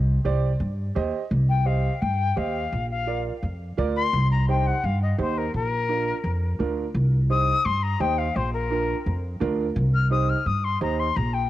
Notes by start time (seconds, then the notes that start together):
Already playing: C2
0.25 C2 G4 C5 D5
0.60 G2
0.95 D#2 G4 C5 D#5
1.31 C2
1.49 G5
1.65 G4 C5 D#5 F5
2.01 G2 G5
2.36 D#2 G4 C5 D#5 F5
2.72 A#1
2.90 F5
3.07 F4 A#4 D5
3.43 F2
3.77 D2 F4 A#4 D5
3.96 C6
4.13 C2
4.31 A#5
4.48 D#4 G4 C5 G5
4.66 F#5
4.84 G2 F5
5.02 D#5
5.18 D#2 D#4 G4 C5
5.37 A#4
5.54 A#1 A#4
5.89 D4 F4 A#4
6.24 F2
6.59 D2 D4 F4 A#4
6.95 C2
7.30 D#4 G4 C5 D#6
7.65 G2 C6
7.82 A#5
8.00 D#2 D#4 G4 C5 G5
8.18 F5
8.36 A#1 C5
8.53 A#4
8.70 D4 F4 A#4
9.06 F2
9.40 D2 D4 F4 A#4
9.76 C2
9.94 F6
10.10 D#4 G4 C5 D#6
10.29 F6
10.46 G2 D#6
10.64 C6
10.81 D#2 D#4 G4 C5 A#5
10.99 C6
11.16 A#1 A#5
11.33 G5